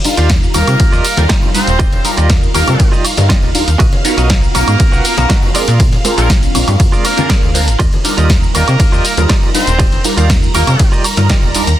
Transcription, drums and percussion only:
0.04 open hi-hat, tambourine, shaker
0.17 closed hi-hat, tambourine, shaker
0.30 kick, snare, closed hi-hat, ride, tambourine, shaker
0.43 shaker
0.54 open hi-hat, tambourine, high conga, high woodblock, shaker
0.67 closed hi-hat, tambourine, high woodblock, shaker
0.80 kick, closed hi-hat, ride, tambourine, shaker
0.93 shaker
1.05 open hi-hat, tambourine, shaker
1.17 closed hi-hat, tambourine, high conga, shaker
1.29 kick, snare, closed hi-hat, ride, tambourine, shaker
1.42 tambourine, low conga
1.55 open hi-hat, tambourine, shaker
1.67 closed hi-hat, tambourine, shaker
1.80 kick, closed hi-hat, ride, shaker
1.93 closed hi-hat, tambourine, high conga
2.05 open hi-hat, tambourine, shaker
2.17 closed hi-hat, tambourine, shaker
2.30 kick, snare, closed hi-hat, ride, tambourine, shaker
2.43 shaker
2.55 open hi-hat, tambourine, high conga, high woodblock, shaker
2.67 closed hi-hat, tambourine, low conga, high woodblock, shaker
2.79 kick, closed hi-hat, ride, tambourine, shaker
2.93 shaker
3.05 open hi-hat, tambourine, high woodblock, shaker
3.17 closed hi-hat, tambourine, high conga, shaker
3.30 kick, snare, closed hi-hat, ride, tambourine, shaker
3.43 tambourine
3.55 open hi-hat, tambourine, shaker
3.68 closed hi-hat, tambourine, shaker
3.79 kick, closed hi-hat, ride, tambourine, shaker
3.92 closed hi-hat, tambourine, high conga
4.05 open hi-hat, tambourine, shaker
4.17 closed hi-hat, tambourine, shaker
4.30 kick, snare, closed hi-hat, ride, tambourine, shaker
4.43 shaker
4.54 open hi-hat, tambourine, high conga, high woodblock, shaker
4.67 closed hi-hat, tambourine, high woodblock, shaker
4.80 kick, closed hi-hat, ride, tambourine, shaker
4.93 shaker
5.05 open hi-hat, tambourine, shaker
5.17 closed hi-hat, tambourine, high conga, shaker
5.30 kick, snare, closed hi-hat, ride, tambourine, shaker
5.43 tambourine, low conga
5.55 open hi-hat, tambourine, shaker
5.68 closed hi-hat, tambourine, shaker
5.80 kick, closed hi-hat, ride, tambourine, shaker
5.92 closed hi-hat, tambourine, high conga
6.05 open hi-hat, tambourine, shaker
6.18 closed hi-hat, tambourine, shaker
6.30 kick, snare, closed hi-hat, ride, shaker
6.43 closed hi-hat, tambourine, shaker
6.55 open hi-hat, tambourine, high conga, high woodblock, shaker
6.67 closed hi-hat, tambourine, low conga, high woodblock, shaker
6.80 kick, closed hi-hat, ride, tambourine, shaker
6.93 shaker
7.05 open hi-hat, tambourine, high woodblock, shaker
7.18 closed hi-hat, tambourine, high conga, shaker
7.30 kick, snare, closed hi-hat, ride, tambourine, shaker
7.43 tambourine
7.55 open hi-hat, tambourine, shaker
7.67 closed hi-hat, tambourine, shaker
7.79 kick, closed hi-hat, ride, tambourine, shaker
7.93 closed hi-hat, tambourine, high conga
8.05 open hi-hat, tambourine, shaker
8.18 closed hi-hat, tambourine, shaker
8.30 kick, snare, closed hi-hat, ride, tambourine, shaker
8.43 shaker
8.55 open hi-hat, tambourine, high conga, high woodblock, shaker
8.68 closed hi-hat, tambourine, high woodblock, shaker
8.80 kick, closed hi-hat, ride, tambourine, shaker
8.93 shaker
9.05 open hi-hat, tambourine, shaker
9.17 closed hi-hat, tambourine, high conga, shaker
9.29 kick, snare, closed hi-hat, ride, tambourine, shaker
9.43 tambourine, low conga
9.55 open hi-hat, tambourine, shaker
9.67 closed hi-hat, tambourine, shaker
9.80 kick, closed hi-hat, ride, tambourine, shaker
9.92 closed hi-hat, tambourine, high conga
10.04 open hi-hat, tambourine, shaker
10.18 closed hi-hat, tambourine, shaker
10.30 kick, snare, closed hi-hat, ride, tambourine, shaker
10.43 shaker
10.54 open hi-hat, tambourine, high conga, high woodblock, shaker
10.67 closed hi-hat, tambourine, low conga, high woodblock, shaker
10.79 kick, closed hi-hat, ride, tambourine, shaker
10.93 shaker
11.04 open hi-hat, tambourine, high woodblock, shaker
11.17 closed hi-hat, tambourine, high conga, shaker
11.29 kick, snare, closed hi-hat, ride, tambourine, shaker
11.43 tambourine
11.55 open hi-hat, tambourine, shaker
11.67 closed hi-hat, tambourine, shaker

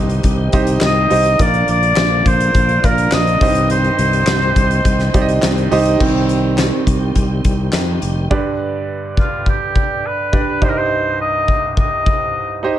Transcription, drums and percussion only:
0.10 closed hi-hat
0.23 kick, closed hi-hat
0.52 kick, closed hi-hat
0.67 closed hi-hat
0.81 snare, clap
1.10 open hi-hat
1.24 closed hi-hat
1.39 kick, closed hi-hat
1.54 closed hi-hat
1.68 closed hi-hat
1.83 closed hi-hat
1.96 snare, clap
2.26 kick, closed hi-hat
2.40 closed hi-hat
2.54 kick, closed hi-hat
2.69 closed hi-hat
2.84 kick, closed hi-hat
2.98 closed hi-hat
3.11 snare, clap
3.27 closed hi-hat
3.41 kick, open hi-hat
3.55 closed hi-hat
3.70 closed hi-hat
3.84 closed hi-hat
3.99 closed hi-hat
4.13 closed hi-hat
4.27 snare, clap
4.42 closed hi-hat
4.56 kick, closed hi-hat
4.71 closed hi-hat
4.85 kick, closed hi-hat
5.00 snare, closed hi-hat
5.14 kick, closed hi-hat
5.29 closed hi-hat
5.42 snare, clap
5.58 closed hi-hat
5.72 open hi-hat
5.86 closed hi-hat
6.00 kick, crash
6.29 closed hi-hat
6.58 snare, clap, closed hi-hat
6.87 kick, closed hi-hat
7.15 kick, closed hi-hat
7.44 kick, closed hi-hat
7.72 snare, clap, closed hi-hat
8.02 closed hi-hat
8.31 kick
9.17 kick
9.46 kick
9.76 kick
10.33 kick
10.62 kick
11.48 kick
11.77 kick
12.06 kick

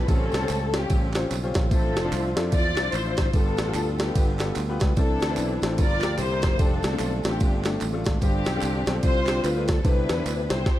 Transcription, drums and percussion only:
0.08 kick, ride, tambourine
0.32 snare, ride, tambourine
0.49 clap, ride, tambourine
0.74 snare, ride, tambourine
0.90 kick, ride, tambourine
1.14 snare, clap, ride, tambourine
1.31 clap, ride, tambourine
1.54 kick, snare, ride, tambourine
1.71 kick, ride, tambourine
1.97 snare, ride, tambourine
2.12 clap, ride, tambourine
2.37 snare, ride, tambourine
2.52 kick, ride, tambourine
2.76 snare, clap, ride, tambourine
2.92 clap, ride, tambourine
3.17 kick, snare, ride, tambourine
3.33 kick, ride, tambourine
3.57 snare, ride, tambourine
3.74 clap, ride, tambourine
3.98 snare, ride, tambourine
4.15 kick, ride, tambourine
4.39 snare, clap, ride, tambourine
4.56 clap, ride, tambourine
4.80 kick, snare, ride, tambourine
4.96 kick, ride, tambourine
5.20 snare, ride, tambourine
5.37 clap, ride, tambourine
5.62 snare, ride, tambourine
5.78 kick, ride, tambourine
6.01 snare, clap, ride, tambourine
6.18 clap, ride, tambourine
6.41 kick, snare, ride, tambourine
6.59 kick, ride, tambourine
6.83 snare, ride, tambourine
6.99 clap, ride, tambourine
7.23 snare, ride, tambourine
7.40 kick, ride, tambourine
7.64 snare, clap, ride, tambourine
7.81 clap, ride, tambourine
8.04 kick, snare, ride, tambourine
8.21 kick, ride, tambourine
8.45 snare, ride, tambourine
8.61 clap, ride, tambourine
8.86 snare, ride, tambourine
9.03 kick, ride, tambourine
9.26 snare, clap, ride, tambourine
9.44 clap, ride, tambourine
9.68 kick, snare, ride, tambourine
9.85 kick, ride, tambourine
10.09 snare, ride, tambourine
10.26 clap, ride, tambourine
10.50 snare, ride, tambourine
10.66 kick, snare

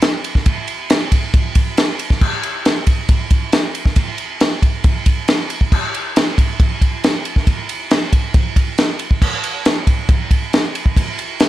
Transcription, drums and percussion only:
0.02 snare, ride
0.24 ride
0.35 kick, snare
0.46 kick, ride
0.68 ride
0.90 snare, ride
1.12 kick, ride
1.34 kick, ride
1.55 kick, ride
1.77 snare, ride
1.99 ride
2.10 kick, snare
2.21 kick, crash
2.43 ride
2.65 snare, ride
2.87 kick, ride
3.09 kick, ride
3.31 kick, ride
3.52 snare, ride
3.75 ride
3.86 kick, snare
3.96 kick, ride
4.18 ride
4.40 snare, ride
4.62 kick, ride
4.84 kick, ride
5.06 kick, ride
5.28 snare, ride
5.50 ride
5.61 kick
5.72 kick, crash
5.94 ride
6.16 snare, ride
6.38 kick, ride
6.60 kick, ride
6.81 kick, ride
7.04 snare, ride
7.25 ride
7.36 kick, snare
7.47 kick, ride
7.69 ride
7.91 snare, ride
8.13 kick, ride
8.34 kick, ride
8.56 kick, ride
8.78 snare, ride
8.99 ride
9.11 kick
9.22 kick, crash
9.44 ride
9.65 snare, ride
9.87 kick, ride
10.09 kick, ride
10.31 kick, ride
10.53 snare, ride
10.75 ride
10.86 kick
10.97 kick, ride
11.19 ride
11.40 snare, ride

